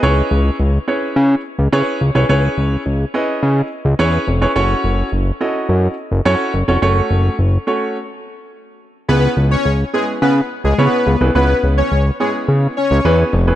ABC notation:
X:1
M:4/4
L:1/16
Q:1/4=106
K:C#m
V:1 name="Grand piano"
[CEGBc]4 z2 [CEGBc]4 z2 [CEGBc]2 z [CEGBc] | [CEGBc]4 z2 [CEGBd]4 z2 [CEGBc]2 z [CEGBc] | [CEFAc]4 z2 [CEFAd]4 z2 [CEFAc]2 z [CEFAc] | [A,CFAc]4 z2 [A,CFAc]2 z8 |
[B,CEGB]4 z2 [B,CEGB]4 z2 [B,CEGc]2 z [B,CEGB] | [B,CEGB]4 z2 [B,CEGc]4 z2 [B,CEGB]2 z [B,CEGB] |]
V:2 name="Supersaw synth"
z16 | z16 | z16 | z16 |
[B,B]2 z [Cc]2 z [G,G] z [B,B] z2 [G,G] [B,B]3 z | [B,B]2 z [Cc]2 z [G,G] z3 [Cc]3 z3 |]
V:3 name="Analog synth bass" clef=bass
C,,2 C,,2 C,,2 z2 C,2 z C,, C, z C,, ^B,,, | C,,2 C,,2 C,,2 z2 C,2 z C,, E,,2 ^E,,,2 | F,,,2 F,,,2 F,,,2 z2 F,,2 z F,,, F,, z F,,, ^E,,, | F,,,2 F,,,2 F,,,2 z8 z2 |
C,,2 C,,2 C,,2 z2 C,2 z C,, C, z C,, ^B,,, | C,,2 C,,2 C,,2 z2 C,2 z C,, E,,2 ^E,,,2 |]